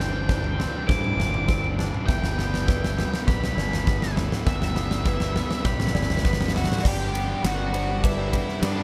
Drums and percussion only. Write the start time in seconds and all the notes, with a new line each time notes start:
0.00 snare
0.29 kick, snare, floor tom
0.44 floor tom
0.60 snare, floor tom
0.89 kick, snare, floor tom, mid tom
1.04 mid tom
1.20 snare, floor tom, mid tom
1.34 floor tom
1.48 kick, snare
1.64 floor tom
1.79 snare, floor tom
1.94 mid tom
2.08 kick, snare, floor tom
2.24 snare, floor tom
2.39 snare
2.54 snare
2.68 kick, snare, floor tom
2.84 snare, floor tom
2.98 snare, floor tom
3.14 snare
3.28 kick, snare, floor tom, mid tom
3.44 snare
3.58 snare
3.73 snare, floor tom
3.87 kick, snare
4.02 snare
4.17 snare, floor tom
4.32 snare, mid tom
4.47 kick, snare, floor tom
4.62 snare, floor tom
4.76 snare
4.91 snare
5.05 kick, snare, floor tom
5.20 snare, floor tom
5.36 snare, floor tom
5.51 snare
5.65 kick, snare, floor tom, mid tom
5.80 snare, mid tom
5.87 snare
5.95 snare, floor tom, mid tom
6.02 snare
6.10 snare, floor tom
6.17 snare
6.25 kick, snare
6.33 snare
6.41 snare, floor tom
6.48 snare
6.56 snare, floor tom
6.64 snare
6.72 snare, mid tom
6.78 snare
6.85 kick, crash
7.15 ride
7.45 snare, ride
7.74 ride
8.04 kick, ride
8.33 kick, ride
8.49 snare
8.63 snare, ride